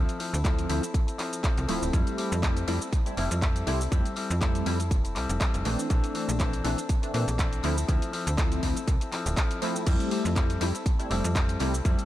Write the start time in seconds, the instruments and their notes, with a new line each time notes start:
Already playing: clean electric guitar F3 C4 E4 A4
0.08 closed hi-hat, tambourine, cabasa
0.19 clean electric guitar F3 C4 E4 A4, open hi-hat, tambourine
0.33 fm bass D2, clean electric guitar C4 E4 A4, tambourine, cabasa
0.44 clean electric guitar F3 C4 E4 A4, analog polysynth F3 A3 C4 E4, kick, clap, closed hi-hat, tambourine, cabasa
0.58 closed hi-hat, tambourine, cabasa
0.69 fm bass D2, clean electric guitar F3 C4 E4 A4, analog polysynth F3 A3 C4 E4, open hi-hat, tambourine
0.82 clean electric guitar C4 E4 A4, closed hi-hat, tambourine, cabasa
0.94 kick, closed hi-hat, tambourine, cabasa
1.07 clean electric guitar C4 E4 A4, closed hi-hat, tambourine, cabasa
1.18 clean electric guitar F3 C4 E4 A4, clap, open hi-hat, tambourine
1.33 closed hi-hat, tambourine, cabasa
1.43 clean electric guitar F3 C4 E4 A4, kick, clap, closed hi-hat, tambourine, cabasa
1.58 fm bass C2, closed hi-hat, tambourine, cabasa
1.68 fm bass D1, clean electric guitar F3 C4 E4 A4, analog polysynth F3 A3 C4 E4, open hi-hat, tambourine
1.82 fm bass D1, clean electric guitar C4 E4 A4, tambourine, cabasa
1.93 fm bass F2, clean electric guitar G3 C4 E4 A4, analog polysynth G3 A3 C4 E4, kick, closed hi-hat, cabasa
2.07 closed hi-hat, tambourine, cabasa
2.17 clean electric guitar G3 C4 E4 A4, open hi-hat, tambourine
2.31 fm bass F2, clean electric guitar C4 E4 A4, cabasa
2.42 clean electric guitar G3 C4 E4 A4, analog polysynth G3 A3 C4 E4, kick, clap, closed hi-hat, cabasa
2.57 closed hi-hat, tambourine, cabasa
2.67 fm bass F2, clean electric guitar G3 C4 E4 A4, analog polysynth G3 A3 C4 E4, open hi-hat, tambourine
2.81 clean electric guitar C4 E4 A4, closed hi-hat, tambourine, cabasa
2.92 kick, closed hi-hat, tambourine, cabasa
3.06 analog polysynth G3 A3 C4 E4, clean electric guitar C4 E4 A4, closed hi-hat, tambourine, cabasa
3.17 fm bass F1, clean electric guitar G3 C4 E4 A4, analog polysynth G3 A3 C4 E4, open hi-hat, tambourine
3.31 fm bass F2, closed hi-hat, tambourine, cabasa
3.42 clean electric guitar G3 C4 E4 A4, kick, clap, closed hi-hat, cabasa
3.56 closed hi-hat, tambourine, cabasa
3.66 fm bass C2, clean electric guitar G3 C4 E4 A4, analog polysynth G3 A3 C4 E4, open hi-hat, tambourine
3.80 clean electric guitar C4 E4 A4, tambourine, cabasa
3.91 fm bass F2, clean electric guitar G3 C4 E4 A4, analog polysynth G3 A3 C4 E4, kick, closed hi-hat, tambourine, cabasa
4.05 closed hi-hat, tambourine, cabasa
4.16 clean electric guitar G3 C4 E4 A4, open hi-hat, tambourine
4.30 fm bass F2, clean electric guitar C4 E4 A4, tambourine, cabasa
4.41 clean electric guitar G3 C4 E4 A4, analog polysynth G3 A3 C4 E4, kick, clap, closed hi-hat, tambourine, cabasa
4.55 closed hi-hat, tambourine, cabasa
4.66 fm bass F2, clean electric guitar G3 C4 E4 A4, analog polysynth G3 A3 C4 E4, open hi-hat, tambourine
4.79 clean electric guitar C4 E4 A4, closed hi-hat, tambourine, cabasa
4.91 fm bass F1, kick, closed hi-hat, tambourine, cabasa
5.04 clean electric guitar C4 E4 A4, closed hi-hat, tambourine, cabasa
5.15 fm bass C2, clean electric guitar G3 C4 E4 A4, clap, open hi-hat, tambourine
5.29 fm bass F1, closed hi-hat, tambourine, cabasa
5.40 clean electric guitar G3 C4 E4 A4, kick, clap, closed hi-hat, tambourine, cabasa
5.54 fm bass F1, closed hi-hat, cabasa
5.65 fm bass A#1, clean electric guitar E3 C4 D4 A4, analog polysynth E3 A3 C4 D4, open hi-hat, tambourine
5.79 clean electric guitar C4 D4 A4, tambourine, cabasa
5.90 fm bass A#1, clean electric guitar E3 C4 D4 A4, analog polysynth E3 A3 C4 D4, kick, closed hi-hat, tambourine, cabasa
6.04 closed hi-hat, tambourine, cabasa
6.14 clean electric guitar E3 C4 D4 A4, open hi-hat, tambourine
6.28 fm bass A#1, clean electric guitar C4 D4 A4, tambourine, cabasa
6.39 clean electric guitar E3 C4 D4 A4, analog polysynth E3 A3 C4 D4, kick, clap, closed hi-hat, tambourine, cabasa
6.53 closed hi-hat, tambourine, cabasa
6.64 fm bass A#1, clean electric guitar E3 C4 D4 A4, analog polysynth E3 A3 C4 D4, open hi-hat, tambourine
6.77 clean electric guitar C4 D4 A4, closed hi-hat, tambourine, cabasa
6.89 kick, closed hi-hat, tambourine, cabasa
7.02 analog polysynth E3 A3 C4 D4, clean electric guitar C4 D4 A4, closed hi-hat, tambourine, cabasa
7.13 fm bass A#2, clean electric guitar E3 C4 D4 A4, analog polysynth E3 A3 C4 D4, open hi-hat, tambourine
7.28 fm bass A#1, closed hi-hat, tambourine, cabasa
7.38 clean electric guitar E3 C4 D4 A4, kick, clap, closed hi-hat, tambourine, cabasa
7.52 closed hi-hat, tambourine, cabasa
7.63 fm bass D2, clean electric guitar F3 C4 E4 A4, analog polysynth F3 A3 C4 E4, open hi-hat, tambourine
7.77 clean electric guitar C4 E4 A4, tambourine, cabasa
7.88 fm bass D2, clean electric guitar F3 C4 E4 A4, analog polysynth F3 A3 C4 E4, kick, closed hi-hat, tambourine, cabasa
8.02 closed hi-hat, tambourine, cabasa
8.12 clean electric guitar F3 C4 E4 A4, open hi-hat, tambourine
8.26 fm bass D2, clean electric guitar C4 E4 A4, closed hi-hat, tambourine, cabasa
8.37 clean electric guitar F3 C4 E4 A4, analog polysynth F3 A3 C4 E4, kick, clap, closed hi-hat, cabasa
8.52 closed hi-hat, tambourine, cabasa
8.62 fm bass D2, clean electric guitar F3 C4 E4 A4, analog polysynth F3 A3 C4 E4, kick, open hi-hat, tambourine
8.76 clean electric guitar C4 E4 A4, closed hi-hat, tambourine, cabasa
8.88 fm bass C2, kick, closed hi-hat, tambourine, cabasa
9.00 clean electric guitar C4 E4 A4, closed hi-hat, tambourine, cabasa
9.12 clean electric guitar F3 C4 E4 A4, clap, open hi-hat, tambourine
9.26 fm bass D1, closed hi-hat, tambourine, cabasa
9.37 clean electric guitar F3 C4 E4 A4, kick, clap, closed hi-hat, tambourine, cabasa
9.51 closed hi-hat, tambourine, cabasa
9.61 clean electric guitar F3 C4 E4 A4, analog polysynth F3 A3 C4 E4, open hi-hat, tambourine
9.75 clean electric guitar C4 E4 A4, tambourine, cabasa
9.86 fm bass F2, clean electric guitar G3 C4 E4 A4, analog polysynth G3 A3 C4 E4, kick, closed hi-hat, tambourine, crash, cabasa
10.00 closed hi-hat, tambourine, cabasa
10.11 clean electric guitar G3 C4 E4 A4, open hi-hat, tambourine
10.24 fm bass F2, clean electric guitar C4 E4 A4, cabasa
10.36 clean electric guitar G3 C4 E4 A4, analog polysynth G3 A3 C4 E4, kick, clap, closed hi-hat, tambourine, cabasa
10.49 closed hi-hat, tambourine, cabasa
10.60 fm bass F2, clean electric guitar G3 C4 E4 A4, analog polysynth G3 A3 C4 E4, open hi-hat, tambourine
10.74 clean electric guitar C4 E4 A4, closed hi-hat, tambourine, cabasa
10.86 kick, closed hi-hat, cabasa
10.99 analog polysynth G3 A3 C4 E4, clean electric guitar C4 E4 A4, closed hi-hat, tambourine, cabasa
11.10 fm bass F1, clean electric guitar G3 C4 E4 A4, analog polysynth G3 A3 C4 E4, open hi-hat, tambourine
11.24 fm bass F2, closed hi-hat, tambourine, cabasa
11.35 clean electric guitar G3 C4 E4 A4, kick, clap, closed hi-hat, cabasa
11.49 closed hi-hat, tambourine, cabasa
11.60 fm bass C2, clean electric guitar G3 C4 E4 A4, analog polysynth G3 A3 C4 E4, open hi-hat, tambourine
11.73 clean electric guitar C4 E4 A4, tambourine, cabasa
11.85 fm bass F2, clean electric guitar G3 C4 E4 A4, analog polysynth G3 A3 C4 E4, kick, closed hi-hat, tambourine, cabasa
11.98 closed hi-hat, tambourine, cabasa